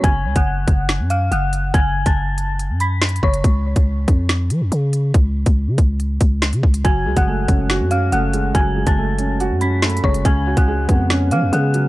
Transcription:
0.03 808-style bass F#1, synth bell G#5 G#6, kick, closed hi-hat
0.25 808-style bass C#2
0.36 808-style bass F#1, synth bell F#5 F#6, kick, closed hi-hat
0.68 808-style bass F#1, kick, closed hi-hat
0.89 snare, closed hi-hat
0.99 808-style bass F#2
1.10 synth bell F5 F6, closed hi-hat
1.31 808-style bass F#1, synth bell F#5 F#6, closed hi-hat
1.53 closed hi-hat
1.74 808-style bass F#1, synth bell G#5 G#6, kick, closed hi-hat
2.06 808-style bass F#1, synth bell A5 A6, kick, closed hi-hat
2.38 closed hi-hat
2.59 closed hi-hat
2.70 808-style bass F#2
2.80 synth bell B5 B6, closed hi-hat
3.02 snare, closed hi-hat
3.09 closed hi-hat
3.16 closed hi-hat
3.23 808-style bass F#1, synth bell C#5 C#6, kick
3.34 closed hi-hat
3.44 808-style bass C#2, kick, closed hi-hat
3.76 808-style bass C#2, kick, closed hi-hat
4.08 808-style bass F2, kick, closed hi-hat
4.29 snare, closed hi-hat
4.50 808-style bass F3, closed hi-hat
4.61 808-style bass F2
4.72 808-style bass C#3, closed hi-hat
4.93 closed hi-hat
5.14 808-style bass C#2, kick, closed hi-hat
5.46 808-style bass C#2, kick, closed hi-hat
5.68 808-style bass C#3
5.78 808-style bass C#2, kick, closed hi-hat
6.00 closed hi-hat
6.21 808-style bass C#2, kick, closed hi-hat
6.42 snare, closed hi-hat
6.53 808-style bass C#3, closed hi-hat
6.63 808-style bass C#2, kick
6.74 closed hi-hat
6.84 808-style bass F#1, felt piano F#3, synth bell G#5 G#6, kick, closed hi-hat
7.06 808-style bass C#2, felt piano G#3
7.16 808-style bass F#1, synth bell F#5 F#6, kick, closed hi-hat
7.27 felt piano A3
7.48 808-style bass F#1, felt piano C#4, kick, closed hi-hat
7.69 felt piano F#4, snare, closed hi-hat
7.80 808-style bass F#2
7.91 felt piano C#4, synth bell F5 F6, closed hi-hat
8.12 808-style bass F#1, felt piano A3, synth bell F#5 F#6, closed hi-hat
8.34 felt piano G#3, closed hi-hat
8.55 808-style bass F#1, felt piano F#3, synth bell G#5 G#6, kick, closed hi-hat
8.76 felt piano G#3
8.87 808-style bass F#1, synth bell A5 A6, kick, closed hi-hat
8.98 felt piano A3
9.19 felt piano C#4, closed hi-hat
9.40 felt piano F#4, closed hi-hat
9.50 808-style bass F#2
9.61 felt piano C#4, synth bell B5 B6, closed hi-hat
9.82 felt piano A3, snare, closed hi-hat
9.90 closed hi-hat
9.97 closed hi-hat
10.04 808-style bass F#1, felt piano G#3, synth bell C#5 C#6, kick
10.14 closed hi-hat
10.25 808-style bass C#2, felt piano C#3, synth bell G#5 G#6, kick, closed hi-hat
10.47 felt piano F#4
10.57 808-style bass C#2, synth bell F#5 F#6, kick, closed hi-hat
10.68 felt piano G#3
10.89 808-style bass F2, felt piano B3, kick, closed hi-hat
11.10 felt piano C#4, snare, closed hi-hat
11.31 808-style bass F3, felt piano B3, synth bell F5 F6, closed hi-hat
11.42 808-style bass F2
11.53 808-style bass C#3, felt piano G#3, synth bell F#5 F#6, closed hi-hat
11.74 felt piano F#3, closed hi-hat

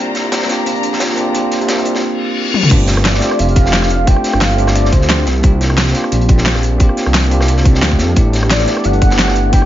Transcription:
Already playing: tine electric piano A#3 C4, string section F4 C5 D5 A#5
0.00 detuned saw bass C2, tine electric piano D4 F4 G4
0.15 snare, closed hi-hat
0.32 snare, closed hi-hat
0.42 snare
0.46 tine electric piano A#3 C4 D4, snare, closed hi-hat
0.51 tine electric piano F4 G4
0.63 detuned saw bass A#1, tine electric piano A#3 C4 D4, closed hi-hat
0.68 tine electric piano F4 G4
0.75 closed hi-hat
0.83 closed hi-hat
0.93 snare
1.00 snare, closed hi-hat
1.10 snare
1.14 tine electric piano A#3 C4 D4, closed hi-hat
1.19 tine electric piano F4 G4
1.31 tine electric piano A#3 C4 D4, closed hi-hat
1.36 tine electric piano F4 G4
1.51 snare, closed hi-hat
1.61 detuned saw bass C2, closed hi-hat
1.65 tine electric piano A#3 C4 D4, snare, closed hi-hat
1.70 tine electric piano F4 G4
1.78 closed hi-hat
1.85 closed hi-hat, open hi-hat
1.95 snare
2.03 reverse cymbal
2.54 high tom
2.63 mid tom
2.68 detuned saw bass G1, tine electric piano A3 C4 D4, kick, closed hi-hat, crash
2.73 tine electric piano F4 G4
2.87 snare, closed hi-hat
2.97 cross-stick
3.05 soft synth lead D5, snare, closed hi-hat
3.14 snare
3.19 tine electric piano A3 C4 D4, snare, closed hi-hat
3.24 tine electric piano F4 G4
3.31 cross-stick
3.39 detuned saw bass F1, soft synth lead F5, closed hi-hat
3.48 closed hi-hat
3.56 kick, closed hi-hat
3.62 tine electric piano A3 C4 D4, snare
3.67 tine electric piano F4 G4
3.72 snare, closed hi-hat
3.82 cross-stick, snare
3.90 closed hi-hat
4.04 tine electric piano A3 C4 D4, soft synth lead G5, kick, closed hi-hat
4.09 tine electric piano F4 G4
4.16 cross-stick
4.24 snare, closed hi-hat
4.33 detuned saw bass G1, cross-stick, closed hi-hat
4.40 soft synth lead F5, snare, closed hi-hat
4.50 closed hi-hat
4.55 tine electric piano A3 C4 D4, closed hi-hat, open hi-hat
4.60 tine electric piano F4 G4
4.67 cross-stick, snare
4.75 soft synth lead D5, closed hi-hat
4.85 snare
4.93 detuned saw bass D2, soft synth lead C5, kick, closed hi-hat
5.00 tine electric piano A3 C4 D4 F4 G4, snare
5.09 snare, closed hi-hat
5.26 detuned saw bass C2, snare, closed hi-hat
5.40 detuned saw bass C2, tine electric piano A#3 C4 D4, kick, closed hi-hat
5.45 tine electric piano F4 G4
5.61 snare, closed hi-hat
5.70 cross-stick
5.77 snare, closed hi-hat
5.87 snare
5.91 tine electric piano A#3 C4 D4, snare, closed hi-hat
5.96 tine electric piano F4 G4
6.04 cross-stick
6.12 detuned saw bass A#1, closed hi-hat
6.21 closed hi-hat
6.29 kick, closed hi-hat
6.35 tine electric piano A#3 C4 D4, snare
6.40 tine electric piano F4 G4
6.46 snare, closed hi-hat
6.55 cross-stick, snare
6.63 closed hi-hat
6.77 tine electric piano A#3 C4 D4, kick, closed hi-hat
6.82 tine electric piano F4 G4
6.89 cross-stick
6.97 snare, closed hi-hat
7.06 detuned saw bass C2, cross-stick, closed hi-hat
7.14 snare, closed hi-hat
7.24 closed hi-hat
7.28 tine electric piano A#3 C4 D4, closed hi-hat, open hi-hat
7.33 tine electric piano F4 G4
7.41 cross-stick, snare
7.48 closed hi-hat
7.57 snare
7.65 kick, closed hi-hat
7.71 tine electric piano A#3 C4 D4, snare
7.76 tine electric piano F4 G4
7.82 detuned saw bass D2, snare, closed hi-hat
7.92 kick
7.99 detuned saw bass F2, snare, closed hi-hat
8.13 detuned saw bass A1, tine electric piano A3 B3 D4, kick, closed hi-hat
8.18 tine electric piano E4 G4
8.33 snare, closed hi-hat
8.43 cross-stick
8.50 soft synth lead D5, snare, closed hi-hat
8.59 snare
8.64 tine electric piano A3 B3 D4, snare, closed hi-hat
8.69 tine electric piano E4 G4
8.77 cross-stick
8.84 detuned saw bass G1, soft synth lead F#5, closed hi-hat
8.93 closed hi-hat
9.02 kick, closed hi-hat
9.08 tine electric piano A3 B3 D4, snare
9.12 tine electric piano E4 G4
9.18 snare, closed hi-hat
9.28 cross-stick, snare
9.36 closed hi-hat
9.49 tine electric piano A3 B3 D4, soft synth lead G5, kick, closed hi-hat
9.54 tine electric piano E4 G4, closed hi-hat
9.62 cross-stick

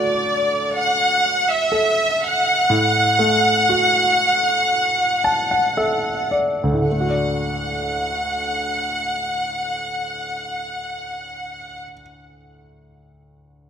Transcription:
Already playing: grand piano D3 A3 F#4, violin section D5
0.77 violin section F#5
1.49 violin section E5
1.72 grand piano A4
2.23 violin section F#5
2.70 grand piano A2
3.19 grand piano A3
3.69 grand piano F#4
5.24 grand piano A5
5.51 grand piano F#5
5.77 grand piano A4 E5
6.31 grand piano D5
6.63 grand piano D2
6.73 grand piano A2
6.82 grand piano D3
6.87 grand piano A3, violin section F#5
7.01 grand piano F#4
7.10 grand piano D5

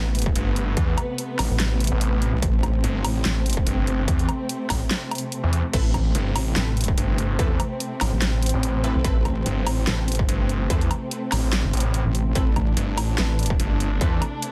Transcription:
Already playing: wobble bass A1, string section C3 A3 B3
0.15 closed hi-hat
0.19 closed hi-hat
0.22 closed hi-hat
0.26 kick
0.36 detuned saw bass G1, closed hi-hat
0.56 closed hi-hat
0.77 detuned saw bass E2, kick, closed hi-hat
0.98 closed hi-hat, low woodblock
1.18 closed hi-hat
1.39 detuned saw bass A1, snare, open hi-hat, low woodblock
1.50 wobble bass A1
1.60 snare, clap, closed hi-hat
1.80 closed hi-hat
1.84 closed hi-hat
1.87 closed hi-hat
1.92 detuned saw bass A1
2.01 closed hi-hat
2.22 closed hi-hat
2.33 wobble bass B1
2.42 wobble bass A1, string section C4, kick, closed hi-hat
2.63 kick, closed hi-hat, low woodblock
2.84 detuned saw bass G1, closed hi-hat
3.04 detuned saw bass A1, open hi-hat, low woodblock
3.25 wobble bass A1, snare, clap, closed hi-hat
3.46 closed hi-hat
3.50 closed hi-hat
3.53 closed hi-hat
3.57 kick
3.67 detuned saw bass G1, closed hi-hat
3.87 closed hi-hat
4.08 detuned saw bass E2, kick, closed hi-hat
4.19 closed hi-hat
4.29 closed hi-hat, low woodblock
4.49 closed hi-hat
4.70 detuned saw bass A1, kick, snare, open hi-hat, low woodblock
4.91 snare, clap, closed hi-hat
5.11 closed hi-hat, low woodblock
5.15 closed hi-hat
5.18 closed hi-hat
5.32 closed hi-hat
5.43 detuned saw bass E2
5.53 closed hi-hat
5.73 wobble bass A1, string section C4, synth stab C4 E4 A4 B4, kick, closed hi-hat, crash
5.94 kick, closed hi-hat, low woodblock
6.15 detuned saw bass G1, closed hi-hat
6.36 detuned saw bass A1, open hi-hat, low woodblock
6.56 wobble bass A1, synth stab C4 E4 A4 B4, snare, clap, closed hi-hat
6.77 closed hi-hat
6.81 closed hi-hat
6.84 closed hi-hat
6.88 kick
6.98 detuned saw bass G1, closed hi-hat
7.18 closed hi-hat
7.39 detuned saw bass E2, synth stab C4 E4 A4 B4, kick, closed hi-hat
7.60 closed hi-hat, low woodblock
7.80 closed hi-hat
8.01 detuned saw bass A1, snare, open hi-hat, low woodblock
8.12 wobble bass A1
8.22 snare, clap, closed hi-hat
8.42 closed hi-hat
8.46 closed hi-hat
8.49 closed hi-hat
8.54 detuned saw bass A1
8.63 closed hi-hat
8.84 synth stab C4 E4 A4 B4, closed hi-hat
8.95 wobble bass B1
9.04 wobble bass A1, synth stab C4 E4 A4 B4, kick, closed hi-hat
9.25 kick, closed hi-hat, low woodblock
9.46 detuned saw bass G1, closed hi-hat
9.67 detuned saw bass A1, open hi-hat, low woodblock
9.87 wobble bass A1, synth stab C4 E4 A4 B4, snare, clap, closed hi-hat
10.08 closed hi-hat
10.12 closed hi-hat
10.15 closed hi-hat
10.19 kick
10.29 detuned saw bass G1, closed hi-hat
10.49 closed hi-hat
10.70 detuned saw bass E2, synth stab C4 E4 A4 B4, kick, closed hi-hat
10.81 closed hi-hat
10.91 closed hi-hat, low woodblock
11.11 closed hi-hat
11.32 detuned saw bass A1, snare, open hi-hat, low woodblock
11.43 detuned saw bass A1
11.53 snare, clap, closed hi-hat
11.64 wobble bass G1
11.73 detuned saw bass A1, closed hi-hat
11.77 closed hi-hat
11.80 closed hi-hat
11.94 closed hi-hat
12.05 wobble bass A1
12.15 closed hi-hat
12.35 wobble bass A1, synth stab C4 E4 A4 B4, string section D4, kick, closed hi-hat
12.56 kick, closed hi-hat, low woodblock
12.77 detuned saw bass G1, closed hi-hat
12.98 detuned saw bass A1, open hi-hat, low woodblock
13.18 wobble bass A1, synth stab C4 E4 A4 B4, snare, clap, closed hi-hat
13.39 closed hi-hat
13.43 closed hi-hat
13.46 closed hi-hat
13.50 kick
13.60 detuned saw bass G1, closed hi-hat
13.80 closed hi-hat
14.01 detuned saw bass E2, synth stab C4 E4 A4 B4, kick, closed hi-hat
14.22 closed hi-hat, low woodblock
14.42 closed hi-hat

